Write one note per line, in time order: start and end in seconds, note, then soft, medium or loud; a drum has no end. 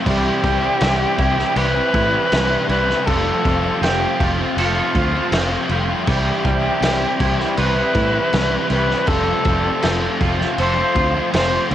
0.00 1.19 C4 medium
0.00 1.55 G4 medium
0.05 0.29 C2 loud
0.05 0.80 C3 medium
0.05 0.42 E3 medium
0.05 0.43 G3 medium
0.05 0.43 G3 loud
0.05 0.44 C4 loud
0.05 0.45 E4 loud
0.05 1.58 G4 loud
0.05 kick loud
0.05 crash loud
0.43 0.67 C2 loud
0.43 0.80 E3 medium
0.43 0.64 G3 medium
0.43 2.70 G3 medium
0.43 0.63 C4 medium
0.43 0.61 E4 medium
0.43 kick loud
0.43 crash medium
0.62 0.82 G3 medium
0.62 0.83 C4 medium
0.62 0.82 E4 medium
0.81 1.05 C2 loud
0.81 1.56 C3 loud
0.81 1.17 E3 loud
0.81 1.20 G3 loud
0.81 1.20 C4 loud
0.81 1.20 E4 loud
0.81 snare loud
0.81 crash medium
1.18 1.42 C2 loud
1.18 1.75 E3 medium
1.18 1.39 G3 medium
1.18 1.37 C4 medium
1.18 1.93 E4 medium
1.18 1.36 E4 medium
1.18 kick medium
1.18 crash medium
1.37 1.76 G3 medium
1.37 1.75 C4 medium
1.37 1.73 E4 medium
1.37 snare soft
1.56 1.79 C2 loud
1.56 4.23 G4 medium
1.56 2.68 B4 loud
1.56 crash medium
1.74 2.14 G3 medium
1.74 2.12 C4 medium
1.74 2.10 E4 medium
1.93 2.17 A2 medium
1.93 2.31 E3 medium
1.93 2.15 G3 medium
1.93 2.14 C4 medium
1.93 3.07 E4 medium
1.93 2.11 E4 medium
1.93 kick medium
1.93 crash medium
2.11 2.31 G3 medium
2.11 2.33 C4 medium
2.11 2.32 E4 medium
2.31 2.55 C2 loud
2.31 2.88 C3 medium
2.31 2.68 E3 loud
2.31 2.52 G3 medium
2.31 2.51 C4 medium
2.31 2.49 E4 medium
2.31 snare loud
2.31 crash loud
2.50 2.70 G3 medium
2.50 2.70 C4 medium
2.50 2.71 E4 medium
2.69 2.92 C2 loud
2.69 3.05 E3 medium
2.69 3.07 G3 medium
2.69 2.90 G3 medium
2.69 2.89 C4 medium
2.69 2.87 E4 medium
2.69 3.08 B4 loud
2.69 crash medium
2.89 3.09 G3 medium
2.89 3.09 C4 medium
2.89 3.05 E4 medium
2.89 snare soft
3.06 3.30 F1 loud
3.06 3.81 F2 loud
3.06 3.81 C3 medium
3.06 3.43 F3 medium
3.06 3.45 G3 medium
3.06 3.45 A3 loud
3.06 3.46 C4 loud
3.06 3.46 F4 loud
3.06 3.84 A4 loud
3.06 kick loud
3.06 crash medium
3.44 3.68 F1 loud
3.44 3.65 F3 medium
3.44 5.71 G3 medium
3.44 3.64 A3 medium
3.44 3.64 C4 loud
3.44 3.63 F4 medium
3.44 kick loud
3.44 crash medium
3.64 3.82 F3 medium
3.64 3.82 A3 medium
3.64 3.84 C4 medium
3.64 3.84 F4 medium
3.81 4.05 F1 medium
3.81 4.57 F2 medium
3.81 4.57 C3 loud
3.81 4.18 F3 loud
3.81 4.19 A3 loud
3.81 5.34 C4 medium
3.81 4.21 C4 loud
3.81 4.21 F4 loud
3.81 4.30 G4 loud
3.81 snare loud
3.81 crash medium
4.19 4.43 F1 medium
4.19 4.39 F3 medium
4.19 4.39 A3 medium
4.19 4.39 C4 medium
4.19 4.95 F4 medium
4.19 4.38 F4 loud
4.19 kick loud
4.19 crash medium
4.39 4.77 F3 medium
4.39 4.76 A3 medium
4.39 4.76 C4 medium
4.39 4.75 F4 medium
4.57 4.80 F1 loud
4.57 5.67 F4 loud
4.57 6.08 A4 medium
4.57 crash medium
4.76 5.15 F3 medium
4.76 5.14 A3 medium
4.76 5.14 C4 medium
4.76 5.12 F4 medium
4.94 5.18 D2 medium
4.94 5.31 F3 medium
4.94 5.16 A3 medium
4.94 5.15 C4 medium
4.94 6.08 F4 medium
4.94 5.12 F4 medium
4.94 kick medium
4.94 crash medium
5.13 5.32 F3 medium
5.13 5.33 A3 medium
5.13 5.34 C4 medium
5.13 5.33 F4 medium
5.32 5.55 F1 loud
5.32 5.88 F2 medium
5.32 5.89 C3 medium
5.32 5.52 F3 loud
5.32 5.51 A3 medium
5.32 7.61 C4 medium
5.32 5.51 C4 loud
5.32 5.49 F4 loud
5.32 snare loud
5.32 crash loud
5.50 5.68 F3 medium
5.50 5.69 A3 medium
5.50 5.70 C4 medium
5.50 5.71 F4 medium
5.69 5.93 F1 medium
5.69 5.89 F3 medium
5.69 6.08 G3 medium
5.69 5.89 A3 medium
5.69 5.88 C4 medium
5.69 5.87 F4 medium
5.69 crash medium
5.88 6.06 F3 medium
5.88 6.06 A3 medium
5.88 6.09 C4 medium
5.88 6.05 F4 medium
6.07 6.31 C2 loud
6.07 6.80 C3 medium
6.07 6.44 E3 medium
6.07 6.46 G3 loud
6.07 6.46 G3 medium
6.07 6.47 C4 loud
6.07 6.46 E4 loud
6.07 7.59 G4 loud
6.07 kick loud
6.07 crash medium
6.45 6.68 C2 loud
6.45 6.81 E3 medium
6.45 6.66 G3 medium
6.45 8.71 G3 medium
6.45 6.64 C4 medium
6.45 6.62 E4 medium
6.45 kick medium
6.45 crash medium
6.64 6.81 G3 medium
6.64 6.83 C4 medium
6.64 6.82 E4 medium
6.81 7.05 C2 medium
6.81 7.57 C3 loud
6.81 7.18 E3 medium
6.81 7.20 G3 loud
6.81 7.21 C4 loud
6.81 7.21 E4 loud
6.81 snare loud
6.81 crash medium
7.20 7.43 C2 medium
7.20 7.76 E3 medium
7.20 7.40 G3 medium
7.20 7.39 C4 medium
7.20 7.96 E4 medium
7.20 7.37 E4 medium
7.20 kick medium
7.20 crash medium
7.38 7.77 G3 medium
7.38 7.76 C4 medium
7.38 7.74 E4 medium
7.38 snare soft
7.57 7.81 C2 loud
7.57 8.70 B4 loud
7.57 9.08 B4 medium
7.57 crash medium
7.75 8.15 G3 medium
7.75 8.13 C4 medium
7.75 8.12 E4 medium
7.94 8.18 A2 medium
7.94 8.32 E3 medium
7.94 8.17 G3 medium
7.94 8.15 C4 medium
7.94 9.09 E4 medium
7.94 kick medium
7.94 crash medium
7.98 8.13 E4 medium
8.13 8.34 G3 medium
8.13 8.34 C4 medium
8.13 8.34 E4 medium
8.33 8.56 C2 loud
8.33 8.89 C3 medium
8.33 8.69 E3 medium
8.33 8.54 G3 medium
8.33 8.53 C4 medium
8.33 8.50 E4 loud
8.33 snare loud
8.33 crash medium
8.52 8.71 G3 medium
8.52 8.72 C4 medium
8.52 8.72 E4 medium
8.70 8.93 C2 loud
8.70 9.05 E3 medium
8.70 8.91 G3 medium
8.70 9.08 G3 medium
8.70 8.90 C4 medium
8.70 8.87 E4 medium
8.70 9.09 B4 loud
8.70 crash medium
8.88 9.09 G3 medium
8.88 9.09 C4 medium
8.88 9.05 E4 medium
8.88 snare soft
9.07 9.31 F1 loud
9.07 9.82 F2 medium
9.07 9.83 C3 loud
9.07 9.44 F3 loud
9.07 9.47 G3 medium
9.07 9.46 A3 loud
9.07 9.47 C4 loud
9.07 9.47 F4 loud
9.07 10.31 A4 loud
9.07 kick loud
9.07 crash medium
9.45 9.68 F1 loud
9.45 9.66 F3 medium
9.45 11.70 G3 medium
9.45 9.65 A3 medium
9.45 9.65 C4 medium
9.45 9.63 F4 medium
9.45 kick loud
9.45 crash medium
9.64 9.83 F3 medium
9.64 9.84 A3 medium
9.64 9.85 C4 medium
9.64 9.84 F4 medium
9.82 10.07 F1 loud
9.82 10.58 F2 loud
9.82 10.59 C3 loud
9.82 10.20 F3 loud
9.82 10.20 A3 loud
9.82 11.33 C4 medium
9.82 10.22 C4 loud
9.82 10.22 F4 loud
9.82 snare loud
9.82 crash medium
10.21 10.44 F1 loud
10.21 10.41 F3 medium
10.21 10.40 A3 medium
10.21 10.40 C4 medium
10.21 10.95 F4 medium
10.21 10.38 F4 medium
10.21 kick medium
10.21 crash medium
10.39 10.78 F3 medium
10.39 10.77 A3 medium
10.39 10.77 C4 medium
10.39 10.75 F4 medium
10.39 snare soft
10.58 10.81 F1 loud
10.58 11.75 A4 medium
10.58 11.30 C5 loud
10.58 crash medium
10.76 11.16 F3 medium
10.76 11.15 A3 medium
10.76 11.15 C4 medium
10.76 11.13 F4 medium
10.95 11.18 D2 loud
10.95 11.31 F3 medium
10.95 11.16 A3 medium
10.95 11.15 C4 medium
10.95 11.75 F4 medium
10.95 11.12 F4 medium
10.95 kick medium
10.95 crash medium
11.14 11.33 F3 medium
11.14 11.33 A3 medium
11.14 11.35 C4 medium
11.14 11.34 F4 medium
11.33 11.57 F1 loud
11.33 11.75 F2 medium
11.33 11.75 C3 loud
11.33 11.52 F3 loud
11.33 11.51 A3 medium
11.33 11.75 C4 medium
11.33 11.52 C4 loud
11.33 11.50 F4 medium
11.33 11.69 C5 loud
11.33 snare loud
11.33 crash medium
11.51 11.70 F3 medium
11.51 11.71 A3 medium
11.51 11.72 C4 medium
11.51 11.72 F4 medium
11.71 11.75 D2 loud
11.71 11.75 F3 medium
11.71 11.75 G3 medium
11.71 11.75 A3 medium
11.71 11.75 C5 loud
11.71 crash medium